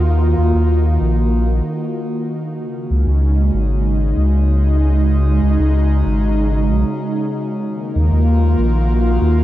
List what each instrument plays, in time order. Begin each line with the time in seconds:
Already playing: sub bass D#2, analog synth pad D#3 A#3 F4 F#4
0.38 sub bass D#2
0.55 sub bass D#2
1.01 sub bass A#1
2.59 analog synth pad C#3
2.81 analog synth pad G#3
2.91 sub bass C#2, analog synth pad D#4
3.07 sub bass C#2
3.54 sub bass G#1
4.17 sub bass C#2
5.43 sub bass C#2
5.59 sub bass C#2
6.06 sub bass G#1
6.69 sub bass B1
7.64 analog synth pad D#3
7.73 analog synth pad A#3
7.93 sub bass D#2, analog synth pad F4
8.12 sub bass D#2
8.58 sub bass A#1, analog synth pad F#4
9.22 sub bass D#2